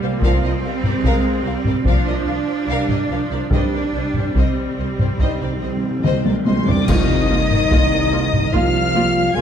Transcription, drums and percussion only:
0.22 taiko loud
0.84 taiko low-mid soft
1.04 taiko medium
1.65 taiko low-mid soft
1.85 taiko medium
2.89 taiko low-mid soft
3.51 taiko loud
4.14 taiko low-mid soft
4.35 taiko medium
4.99 taiko low-mid soft
5.20 taiko medium
6.05 taiko mid medium
6.26 taiko high medium
6.47 taiko high medium
6.68 taiko low medium
6.88 concert bass drum medium
6.88 taiko loud
6.88 crash medium
7.51 taiko low-mid medium
7.71 taiko medium
8.33 taiko low-mid soft
8.53 taiko medium

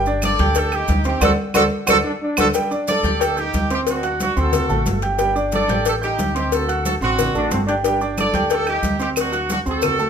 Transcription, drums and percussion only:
0.06 high conga soft
0.06 maracas soft
0.22 cowbell medium
0.22 high conga medium
0.22 claves medium
0.22 maracas medium
0.39 cowbell medium
0.39 high conga medium
0.39 maracas soft
0.55 cowbell loud
0.55 high conga soft
0.55 maracas medium
0.72 high conga soft
0.72 claves medium
0.72 maracas soft
0.88 cowbell medium
0.88 high conga loud
0.88 maracas medium
1.04 cowbell medium
1.04 maracas soft
1.21 cowbell loud
1.21 high conga loud
1.21 claves medium
1.21 maracas loud
1.54 cowbell loud
1.54 high conga medium
1.54 claves medium
1.54 maracas loud
1.87 cowbell loud
1.87 high conga loud
1.87 claves loud
1.87 maracas loud
2.37 cowbell medium
2.37 high conga medium
2.37 claves loud
2.37 maracas loud
2.54 cowbell loud
2.54 maracas medium
2.71 high conga soft
2.71 maracas soft
2.88 cowbell medium
2.88 high conga loud
2.88 maracas medium
3.04 cowbell medium
3.04 high conga loud
3.04 maracas soft
3.21 cowbell loud
3.21 high conga soft
3.21 maracas medium
3.37 high conga soft
3.37 maracas soft
3.54 cowbell medium
3.54 high conga medium
3.54 maracas medium
3.70 cowbell medium
3.70 high conga soft
3.70 maracas soft
3.87 cowbell loud
3.87 high conga soft
3.87 maracas medium
4.03 cowbell medium
4.03 high conga soft
4.03 maracas soft
4.20 cowbell medium
4.20 high conga medium
4.20 maracas medium
4.37 high conga soft
4.37 maracas soft
4.53 cowbell loud
4.53 high conga soft
4.53 low conga medium
4.53 maracas medium
4.69 high conga soft
4.69 low conga medium
4.69 maracas soft
4.86 cowbell medium
4.86 high conga medium
4.86 maracas medium
5.02 cowbell medium
5.02 high conga soft
5.02 maracas soft
5.19 cowbell loud
5.19 high conga soft
5.19 maracas medium
5.36 high conga soft
5.36 maracas soft
5.52 cowbell medium
5.52 high conga medium
5.52 maracas medium
5.69 cowbell medium
5.69 high conga loud
5.69 maracas soft
5.85 cowbell loud
5.85 maracas medium
6.03 high conga soft
6.03 maracas soft
6.19 cowbell medium
6.19 high conga medium
6.19 maracas medium
6.36 cowbell medium
6.36 maracas soft
6.52 cowbell loud
6.52 high conga soft
6.52 maracas medium
6.69 cowbell medium
6.69 high conga soft
6.69 maracas soft
6.85 cowbell medium
6.85 high conga medium
6.85 maracas medium
7.02 high conga soft
7.02 maracas soft
7.19 cowbell loud
7.19 high conga soft
7.19 low conga medium
7.19 maracas medium
7.35 high conga soft
7.35 maracas soft
7.51 cowbell medium
7.51 high conga medium
7.51 maracas medium
7.68 cowbell medium
7.68 maracas soft
7.84 cowbell loud
7.84 high conga soft
7.84 maracas medium
8.01 high conga soft
8.01 maracas soft
8.18 cowbell medium
8.18 high conga medium
8.18 claves medium
8.18 maracas medium
8.34 cowbell medium
8.34 high conga loud
8.34 maracas soft
8.50 cowbell loud
8.50 high conga soft
8.50 maracas medium
8.66 high conga soft
8.66 claves medium
8.66 maracas soft
8.83 cowbell medium
8.83 high conga loud
8.83 maracas medium
9.00 cowbell medium
9.00 maracas soft
9.16 cowbell loud
9.16 high conga soft
9.16 claves medium
9.16 maracas medium
9.33 cowbell medium
9.33 high conga soft
9.33 maracas soft
9.50 cowbell medium
9.50 high conga medium
9.50 maracas medium
9.66 high conga soft
9.66 maracas soft
9.82 cowbell loud
9.82 high conga soft
9.82 low conga medium
9.82 claves medium
9.82 maracas medium
9.99 high conga soft
9.99 maracas soft

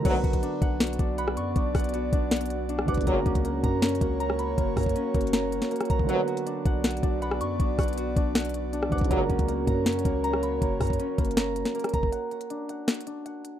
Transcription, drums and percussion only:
0.05 kick loud
0.05 closed hi-hat medium
0.05 crash loud
0.24 kick medium
0.24 closed hi-hat soft
0.33 kick medium
0.33 closed hi-hat medium
0.43 closed hi-hat medium
0.62 kick loud
0.62 closed hi-hat medium
0.80 snare loud
0.80 closed hi-hat medium
0.87 closed hi-hat medium
0.93 closed hi-hat medium
0.99 kick medium
0.99 closed hi-hat medium
1.18 closed hi-hat medium
1.28 cross-stick loud
1.37 closed hi-hat medium
1.56 kick loud
1.56 closed hi-hat medium
1.75 kick medium
1.75 cross-stick medium
1.75 closed hi-hat medium
1.75 open hi-hat medium
1.80 closed hi-hat medium
1.84 closed hi-hat medium
1.89 closed hi-hat medium
1.94 closed hi-hat medium
2.13 kick loud
2.13 closed hi-hat medium
2.31 snare loud
2.31 closed hi-hat medium
2.36 closed hi-hat medium
2.41 closed hi-hat medium
2.46 closed hi-hat medium
2.50 closed hi-hat medium
2.69 closed hi-hat medium
2.79 cross-stick loud
2.88 kick medium
2.88 closed hi-hat soft
2.94 kick loud
2.94 closed hi-hat medium
3.01 closed hi-hat medium
3.07 kick loud
3.07 closed hi-hat medium
3.26 kick loud
3.26 closed hi-hat soft
3.35 kick medium
3.35 closed hi-hat medium
3.45 closed hi-hat medium
3.64 kick loud
3.64 closed hi-hat medium
3.82 snare loud
3.82 closed hi-hat medium
3.89 closed hi-hat medium
3.95 closed hi-hat medium
4.01 kick medium
4.01 closed hi-hat medium
4.20 closed hi-hat medium
4.30 cross-stick medium
4.39 closed hi-hat medium
4.58 kick loud
4.58 closed hi-hat medium
4.77 kick medium
4.77 cross-stick medium
4.77 closed hi-hat soft
4.77 open hi-hat medium
4.83 kick loud
4.83 closed hi-hat medium
4.89 closed hi-hat medium
4.96 closed hi-hat medium
5.14 kick loud
5.14 closed hi-hat medium
5.21 closed hi-hat medium
5.27 closed hi-hat medium
5.33 snare loud
5.33 closed hi-hat medium
5.52 closed hi-hat medium
5.62 snare medium
5.71 closed hi-hat medium
5.76 closed hi-hat medium
5.80 cross-stick medium
5.80 closed hi-hat medium
5.85 closed hi-hat medium
5.90 kick medium
5.90 closed hi-hat medium
5.99 kick loud
6.09 closed hi-hat medium
6.28 closed hi-hat soft
6.37 closed hi-hat medium
6.47 closed hi-hat medium
6.66 kick loud
6.66 closed hi-hat medium
6.84 snare loud
6.84 closed hi-hat medium
6.91 closed hi-hat medium
6.97 closed hi-hat medium
7.03 kick medium
7.03 closed hi-hat medium
7.22 closed hi-hat medium
7.31 cross-stick loud
7.41 closed hi-hat medium
7.60 kick loud
7.60 closed hi-hat medium
7.79 kick loud
7.79 cross-stick medium
7.79 closed hi-hat medium
7.79 open hi-hat medium
7.83 closed hi-hat medium
7.88 closed hi-hat medium
7.93 closed hi-hat medium
7.98 closed hi-hat medium
8.16 kick loud
8.16 closed hi-hat medium
8.35 snare loud
8.35 closed hi-hat medium
8.40 closed hi-hat medium
8.45 closed hi-hat medium
8.49 closed hi-hat medium
8.54 closed hi-hat medium
8.73 closed hi-hat medium
8.83 cross-stick loud
8.92 kick medium
8.92 closed hi-hat soft
8.98 kick loud
8.98 closed hi-hat medium
9.04 closed hi-hat medium
9.11 kick loud
9.11 closed hi-hat medium
9.30 kick medium
9.30 closed hi-hat soft
9.39 kick medium
9.39 closed hi-hat medium
9.49 closed hi-hat medium
9.67 kick loud
9.67 closed hi-hat medium
9.86 snare loud
9.86 closed hi-hat medium
9.92 closed hi-hat medium
9.99 closed hi-hat medium
10.05 kick medium
10.05 closed hi-hat medium
10.24 closed hi-hat medium
10.33 cross-stick medium
10.43 closed hi-hat medium
10.62 kick loud
10.62 closed hi-hat medium
10.81 kick medium
10.81 cross-stick medium
10.81 closed hi-hat soft
10.81 open hi-hat medium
10.87 kick loud
10.87 closed hi-hat medium
10.93 closed hi-hat medium
11.00 closed hi-hat medium
11.18 kick loud
11.18 closed hi-hat medium
11.25 closed hi-hat medium
11.31 closed hi-hat medium
11.37 snare loud
11.37 closed hi-hat medium
11.56 closed hi-hat medium
11.65 snare medium
11.75 closed hi-hat medium
11.79 closed hi-hat medium
11.84 cross-stick medium
11.84 closed hi-hat medium
11.89 closed hi-hat medium
11.94 kick medium
11.94 closed hi-hat medium
12.03 kick loud
12.12 closed hi-hat medium
12.31 closed hi-hat soft
12.41 closed hi-hat medium
12.50 closed hi-hat medium
12.69 closed hi-hat medium
12.88 snare loud
12.88 closed hi-hat medium
12.94 closed hi-hat medium
13.01 closed hi-hat medium
13.07 closed hi-hat medium
13.26 closed hi-hat medium
13.45 closed hi-hat medium

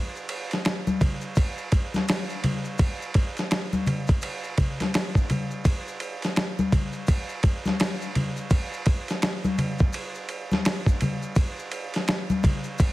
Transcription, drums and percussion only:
0.16 maracas soft
0.29 ride medium
0.29 maracas soft
0.51 snare soft
0.51 ride soft
0.51 maracas soft
0.65 snare loud
0.65 hi-hat pedal soft
0.65 ride medium
0.65 maracas medium
0.87 high conga medium
0.87 maracas soft
1.01 kick medium
1.01 ride medium
1.01 low conga medium
1.01 maracas soft
1.21 maracas soft
1.35 kick loud
1.35 ride medium
1.35 maracas medium
1.58 maracas soft
1.72 kick medium
1.72 ride medium
1.72 maracas soft
1.94 snare soft
1.94 high conga medium
1.94 maracas soft
2.08 snare loud
2.08 hi-hat pedal soft
2.08 ride medium
2.08 maracas medium
2.30 maracas soft
2.44 ride medium
2.44 high conga soft
2.44 low conga medium
2.44 maracas soft
2.65 maracas soft
2.78 kick loud
2.78 ride medium
2.78 maracas medium
3.02 maracas soft
3.14 kick medium
3.14 ride medium
3.14 maracas soft
3.37 snare soft
3.37 ride soft
3.37 maracas soft
3.51 snare loud
3.51 hi-hat pedal soft
3.51 ride medium
3.51 maracas medium
3.73 high conga medium
3.73 maracas soft
3.86 ride medium
3.86 low conga medium
3.86 maracas soft
4.07 kick medium
4.07 ride soft
4.07 maracas soft
4.21 ride medium
4.21 maracas medium
4.44 maracas soft
4.58 kick medium
4.58 ride medium
4.58 low conga medium
4.58 maracas soft
4.80 snare soft
4.80 ride soft
4.80 high conga medium
4.80 maracas soft
4.94 snare loud
4.94 hi-hat pedal medium
4.94 ride medium
4.94 maracas medium
5.15 kick medium
5.15 maracas soft
5.30 ride medium
5.30 high conga soft
5.30 low conga medium
5.30 maracas soft
5.51 maracas soft
5.65 kick loud
5.65 ride medium
5.65 maracas medium
5.88 maracas soft
6.00 ride medium
6.00 maracas soft
6.22 snare soft
6.22 ride soft
6.22 maracas soft
6.36 snare loud
6.36 hi-hat pedal soft
6.36 ride medium
6.36 maracas medium
6.59 high conga medium
6.59 maracas soft
6.72 kick loud
6.72 ride medium
6.72 low conga medium
6.72 maracas soft
6.93 maracas soft
7.07 kick medium
7.07 ride medium
7.07 maracas medium
7.29 maracas soft
7.43 kick medium
7.43 ride medium
7.43 maracas soft
7.65 snare soft
7.65 high conga medium
7.65 maracas soft
7.80 snare loud
7.80 hi-hat pedal medium
7.80 ride medium
7.80 maracas medium
8.02 maracas soft
8.15 ride medium
8.15 high conga soft
8.15 low conga medium
8.15 maracas soft
8.37 maracas soft
8.50 kick loud
8.50 ride medium
8.50 maracas medium
8.73 maracas soft
8.86 kick medium
8.86 ride medium
8.86 maracas soft
9.08 snare soft
9.08 ride soft
9.08 maracas soft
9.22 snare loud
9.22 hi-hat pedal soft
9.22 ride medium
9.22 maracas medium
9.44 high conga medium
9.44 maracas soft
9.58 ride medium
9.58 low conga medium
9.58 maracas soft
9.78 kick medium
9.78 maracas soft
9.93 ride medium
9.93 maracas medium
10.15 maracas soft
10.29 ride medium
10.29 maracas soft
10.51 snare soft
10.51 high conga medium
10.51 maracas soft
10.65 snare loud
10.65 hi-hat pedal medium
10.65 ride medium
10.65 maracas medium
10.86 kick medium
10.86 maracas soft
11.01 ride medium
11.01 high conga soft
11.01 low conga medium
11.01 maracas soft
11.22 maracas soft
11.35 kick loud
11.35 ride medium
11.35 maracas medium
11.59 maracas soft
11.72 ride medium
11.72 maracas soft
11.94 snare soft
11.94 ride soft
11.94 maracas soft
12.08 snare loud
12.08 hi-hat pedal soft
12.08 ride medium
12.08 maracas medium
12.30 high conga medium
12.30 maracas soft
12.43 kick medium
12.43 ride medium
12.43 low conga medium
12.43 maracas soft
12.64 maracas soft
12.78 kick loud
12.78 ride medium
12.78 maracas medium

